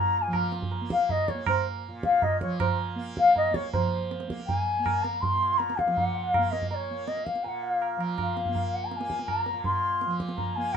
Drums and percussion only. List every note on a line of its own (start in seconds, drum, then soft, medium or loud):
0.33 tabla na medium
0.33 tabla ge medium
0.52 tabla te medium
0.62 tabla ge medium
0.72 tabla tin medium
0.90 tabla ke medium
1.09 tabla tin medium
1.09 tabla ge medium
1.28 tabla ke medium
1.46 tabla na loud
1.46 tabla ge loud
2.03 tabla ke medium
2.22 tabla tin medium
2.22 tabla ge medium
2.41 tabla ke medium
2.60 tabla na loud
2.60 tabla ge medium
3.17 tabla ke medium
3.36 tabla tin medium
3.36 tabla ge medium
3.54 tabla ke medium
3.74 tabla tin loud
3.74 tabla ge medium
4.11 tabla te medium
4.20 tabla te medium
4.30 tabla ke medium
4.40 tabla te medium
4.49 tabla tin medium
4.49 tabla ge medium
4.86 tabla na medium
4.86 tabla ge medium
5.04 tabla te medium
5.23 tabla tin medium
5.23 tabla ge medium
5.60 tabla te medium
5.70 tabla te medium
5.79 tabla ke medium
5.88 tabla te medium
5.97 tabla tin medium
5.97 tabla ge medium
6.34 tabla na medium
6.34 tabla ge medium
6.53 tabla te medium
6.62 tabla ge soft
6.71 tabla tin medium
7.08 tabla te medium
7.17 tabla te medium
7.27 tabla ke medium
7.35 tabla te medium
7.44 tabla tin medium
7.82 tabla na medium
8.01 tabla na medium
8.18 tabla na medium
8.18 tabla ge medium
8.37 tabla te medium
8.46 tabla ge medium
8.55 tabla tin medium
8.55 tabla ge medium
8.91 tabla te medium
9.01 tabla te medium
9.10 tabla ke medium
9.19 tabla te medium
9.28 tabla na medium
9.28 tabla ge medium
9.46 tabla te medium
9.64 tabla tin medium
9.64 tabla ge medium
10.01 tabla te medium
10.11 tabla te medium
10.20 tabla ke medium
10.29 tabla te medium
10.38 tabla tin medium
10.38 tabla ge medium